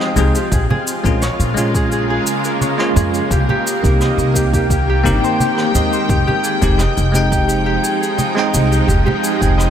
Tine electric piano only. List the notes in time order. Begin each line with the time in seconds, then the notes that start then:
Already playing: G#3 C4 D#4 G5
0.16 G#3 C4 D#4 G#4
1.04 G#3 C4 C#4 F4
1.54 G#3 C#4
1.59 F4
2.78 G#3 C#4 F4
3.83 A#3 C4 D#4 G4
4.34 A#3 C4 D#4 G4
5.03 A#3 C4 D#4 G4
5.72 G#3 C4 D#4
6.61 G#3 C4 D#4 G4
7.12 G#3 C4 D#4
7.16 G5
8.35 G#3 C4 D#4
8.39 G5
9.41 G#3 C4 D#4 G5